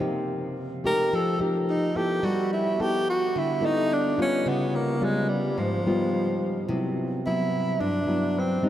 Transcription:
0.00 nylon-string guitar C3 A#3 D#4 G4
0.84 nylon-string guitar A3 D#4 G4, tenor saxophone A#4
1.13 nylon-string guitar F3, tenor saxophone A4
1.39 nylon-string guitar A3 D#4 G4, tenor saxophone C4
1.70 tenor saxophone D#4
1.96 nylon-string guitar B3 E4 A4, tenor saxophone G4
2.23 nylon-string guitar G3, tenor saxophone F#4
2.54 tenor saxophone E4
2.79 nylon-string guitar B3 E4 A4, tenor saxophone G4
3.10 tenor saxophone F#4
3.36 nylon-string guitar D3, tenor saxophone E4
3.61 nylon-string guitar B3 E4 A4
3.66 tenor saxophone D#4
3.93 tenor saxophone D4
4.18 nylon-string guitar G3 B3 F4, tenor saxophone C#4
4.46 nylon-string guitar C#3, tenor saxophone B3
4.76 tenor saxophone A#3
5.01 nylon-string guitar G3 B3 F4, tenor saxophone G#3
5.29 tenor saxophone G3
5.58 nylon-string guitar G#2, tenor saxophone F3
5.86 nylon-string guitar G3 B3 F4
6.68 nylon-string guitar C3 F#3 B3 E4
7.26 nylon-string guitar F#3 B3 E4, tenor saxophone E4
7.80 nylon-string guitar G2, tenor saxophone D4
8.07 nylon-string guitar F#3 B3 E4
8.39 tenor saxophone C4
8.63 nylon-string guitar G3 C4 D#4

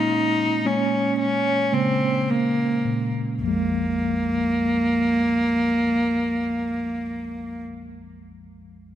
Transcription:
Already playing: tine electric piano A#2 G#3 A#3 C#4, cello D#4
0.64 tine electric piano G#3 A#3 C#4, cello C#4
1.19 cello C#4
1.72 tine electric piano C#3 G#3 A#3, cello C4
2.29 cello A#3
2.85 tine electric piano A#2
3.39 tine electric piano A#1 F2
3.43 tine electric piano F3, cello A#3
3.48 tine electric piano G#3

